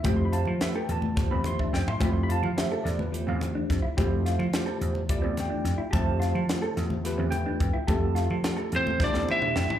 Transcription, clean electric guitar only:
X:1
M:7/8
L:1/16
Q:1/4=107
K:Flyd
V:1 name="Clean electric guitar"
G2 F2 z A2 z2 C2 D2 E | G2 F2 z A2 z2 C2 D2 E | G2 F2 z A2 z2 C2 D2 E | G2 F2 z A2 z2 C2 D2 E |
G2 F2 z A2 z2 C2 D2 E |]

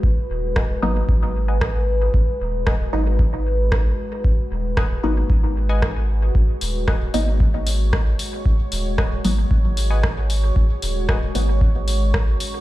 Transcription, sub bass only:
X:1
M:4/4
L:1/8
Q:1/4=114
K:G#m
V:1 name="Sub bass" clef=bass
G,,, D,,,2 G,,, G,,,4 | G,,, D,,,2 G,,,4 z | G,,, D,,,2 G,,, G,,,4 | G,,, D,,,2 G,,,4 z |
G,,, D,,,2 G,,, G,,,4 | G,,, D,,,2 G,,,4 z |]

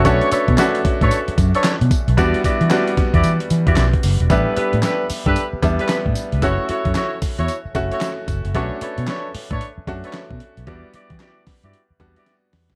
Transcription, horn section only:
X:1
M:4/4
L:1/16
Q:"Swing 16ths" 1/4=113
K:Edor
V:1 name="Horn section"
[DABc] z [DABc] z [DABc] z2 [DABc] z3 [DABc] z4 | [EFGd] z [EFGd] z [EFGd] z2 [EFGd] z3 [EFGd] z4 | [DGAB] z [DGAB] z [DGAB] z2 [DGAB] z3 [DGAB] z4 | [EFAc] z [EFAc] z [EFAc] z2 [EFAc] z3 [EFAc] z4 |
[DABc] z [DABc] z [DABc] z2 [DABc] z3 [DABc] z4 | [EFGd] z [EFGd] z [EFGd] z2 [EFGd] z3 [EFGd] z4 |]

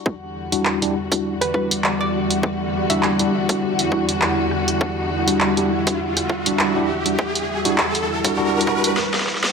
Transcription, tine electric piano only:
X:1
M:4/4
L:1/16
Q:"Swing 16ths" 1/4=101
K:Em
V:1 name="Tine electric piano"
z3 [G,DEF]2 [G,DEG] z [G,DEF] z2 [G,DEF] z4 z | z3 [G,DEF]2 [G,DEG] z [G,DEF] z2 [G,DEF] z4 z | z3 [G,DEF]2 [G,DEG] z [G,DEF] z3 [G,DEF]2 [G,DEG] z [G,DEF] | z3 [G,DEF] z3 [G,DEF] [G,DEF]2 [G,DEF]2 z4 |]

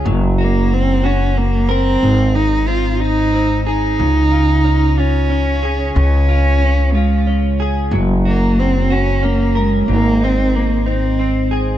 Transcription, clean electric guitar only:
X:1
M:6/8
L:1/8
Q:3/8=61
K:Db
V:1 name="Clean electric guitar"
G, G2 G2 B | A,, E C E C A | D, F D F D A | D, F D F D A |
G, G2 G D B | A,, E C E C A |]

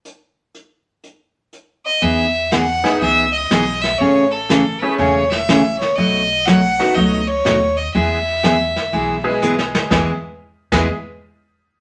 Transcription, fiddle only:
X:1
M:4/4
L:1/8
Q:"Swing" 1/4=122
K:E
V:1 name="Fiddle"
z6 z d | e2 f2 e d2 e | c A2 B c e2 c | d2 f2 d c2 d |
e6 z2 | z8 |]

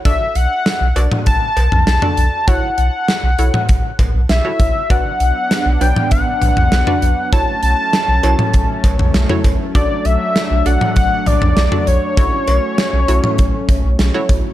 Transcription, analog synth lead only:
X:1
M:4/4
L:1/8
Q:1/4=99
K:Amix
V:1 name="Analog synth lead"
e f2 z a2 a2 | f f4 z e2 | f3 g f4 | a a4 z3 |
d e2 f f d2 c- | c6 z2 |]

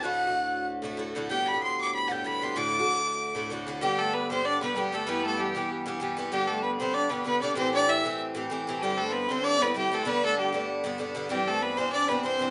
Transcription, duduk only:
X:1
M:4/4
L:1/8
Q:"Swing" 1/4=192
K:G
V:1 name="Duduk"
z8 | z8 | z8 | G, A, B,2 D B, G, A, |
B, A, G,2 z4 | G, A, B, C D B, B, D | C D E2 z4 | G, A, B, C D B, G, A, |
B, A, G, A, z4 | G, A, B,2 D B, C2 |]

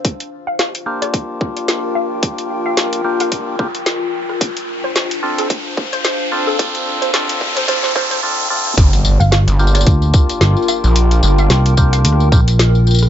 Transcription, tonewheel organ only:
X:1
M:4/4
L:1/8
Q:"Swing 16ths" 1/4=110
K:Gm
V:1 name="Tonewheel organ"
z3 [B,DFG]4- [B,DFG]- | [B,DFG]3 [B,DFG]2 [B,DFG] z2 | z3 [CDFA] z3 [CDFA] | [CDFA]2 [CDFA]2 [CDFA] [CDFA] [CDFA] [CDFA] |
z3 [B,DFG]4- [B,DFG]- | [B,DFG]3 [B,DFG]2 [B,DFG] z2 |]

